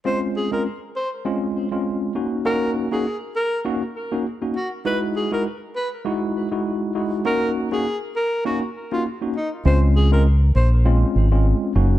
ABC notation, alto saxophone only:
X:1
M:4/4
L:1/16
Q:"Swing 16ths" 1/4=100
K:Db
V:1 name="Alto saxophone"
c z A B z2 c z8 z | B2 z A2 z B2 z6 G z | =B z ^G _B z2 =B z8 z | B2 z A2 z B2 G z2 F z2 E z |
c z A B z2 c z8 z |]